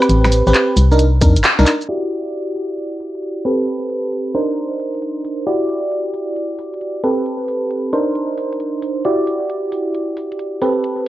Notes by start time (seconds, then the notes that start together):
Already playing: C4 G4 B4
0.02 high woodblock, shaker
0.09 A1, closed hi-hat, shaker
0.24 snare, high woodblock
0.32 open hi-hat, shaker
0.47 A1 C4 G4 B4, shaker
0.54 clap, closed hi-hat, shaker
0.77 C2, open hi-hat, shaker
0.91 D4 D#4 A#4, shaker
0.99 closed hi-hat, shaker
1.21 F2 D4 D#4 A#4, kick, open hi-hat, shaker
1.36 G1, closed hi-hat, shaker
1.44 clap, closed hi-hat, shaker
1.59 C2 D4 D#4 A#4, snare
1.66 clap, open hi-hat, shaker
1.81 shaker
1.89 E4 F#4 G4 D5
2.11 open hi-hat
2.33 closed hi-hat
2.55 open hi-hat
2.78 closed hi-hat
3.00 open hi-hat
3.15 closed hi-hat
3.23 closed hi-hat
3.45 C4 G4 A4 B4, open hi-hat
3.67 closed hi-hat
3.90 open hi-hat
4.12 closed hi-hat
4.35 D4 D#4 A#4 C5, open hi-hat
4.57 closed hi-hat
4.79 open hi-hat
4.94 closed hi-hat
5.02 closed hi-hat
5.24 open hi-hat
5.46 E4 F#4 G4 D5, closed hi-hat
5.69 open hi-hat
5.91 closed hi-hat
6.14 open hi-hat
6.36 closed hi-hat
6.59 open hi-hat
6.74 closed hi-hat
6.81 closed hi-hat
7.03 C4 G4 A4 B4, open hi-hat
7.26 closed hi-hat
7.48 open hi-hat
7.71 closed hi-hat
7.93 D4 D#4 A#4 C5, open hi-hat
8.15 closed hi-hat
8.38 open hi-hat
8.53 closed hi-hat
8.60 closed hi-hat
8.82 open hi-hat
9.05 E4 F#4 G4 D5, closed hi-hat
9.27 open hi-hat
9.50 closed hi-hat
9.72 open hi-hat
9.95 closed hi-hat
10.17 open hi-hat
10.32 closed hi-hat
10.39 closed hi-hat
10.61 C4 G4 A4 B4, open hi-hat
10.84 closed hi-hat